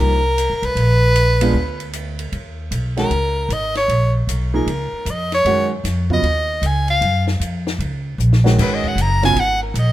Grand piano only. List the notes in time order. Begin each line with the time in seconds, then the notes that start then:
Already playing: F3 A#3 D#4 G4
1.41 G#3 B3 D4 F4
2.97 D#3 G#3 C#4 F#4
4.54 F3 A#3 D#4 G#4
5.46 D#3 G#3 C#4 F#4
6.10 C#3 F#3 B3 F4
8.44 D#3 G#3 C#4 F#4
9.23 C#3 F#3 B3 F4